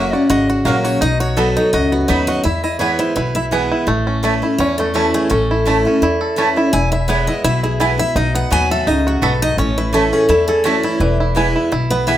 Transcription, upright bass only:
Already playing: F#1
0.30 G#1
0.65 A#1
1.02 B1
1.74 C#2
2.10 D#2
2.45 E2
3.16 B1
3.87 A1
4.59 E2
5.31 A1
6.02 E2
6.73 E1
7.44 B1
8.15 B1
8.51 D#2
8.87 C#2
9.22 B1
9.57 A1
10.29 E2
11.00 E1
11.73 B1

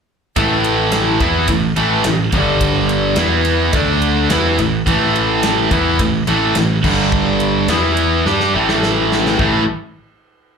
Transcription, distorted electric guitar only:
0.36 A2 E3 A3
1.20 E3 B3 E4
1.49 A2 E3
1.76 A2 E3 A3
2.04 A2 E3
2.33 G2 D3 G3
3.18 E3 B3 E4
3.74 D3 A3 D4
4.30 E3 B3 E4
4.59 A2 E3
4.86 A2 E3 A3
5.71 E3 B3 E4
6.00 A2 E3
6.28 A2 E3 A3
6.56 A2 E3
6.85 G2 D3 G3
7.69 E3 B3 E4
8.26 G3 D4 G4
8.54 A2 E3 A3
9.39 A2 E3 A3

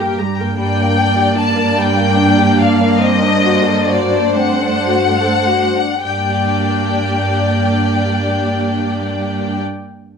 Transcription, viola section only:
0.00 A#3 A#4
0.20 G3 G4
0.39 A#3 A#4
0.59 A#3 D4
4.38 A3
6.03 A#3 D4

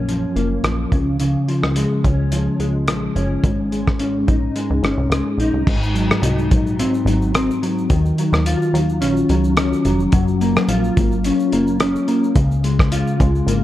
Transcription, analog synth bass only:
Already playing: A#1
0.36 F#1
0.64 A#1
0.92 C#2
1.63 C#2
2.04 C#2
2.59 C#2
2.87 A#1
3.15 F#1
3.44 G#1
4.28 A#1
4.70 C#2
4.83 G#1
4.97 C2
5.10 C#2
5.38 A#1
5.54 C2
5.67 G#1
6.22 C2
6.51 A#1
7.05 G#1
7.90 D#2
8.33 D#2
8.73 D#2
9.01 A#1
9.29 C#2
9.85 F1
10.13 F#1
10.68 A#1
10.97 G#1
11.52 F#1
12.35 C#2
13.20 C#2
13.46 G#1

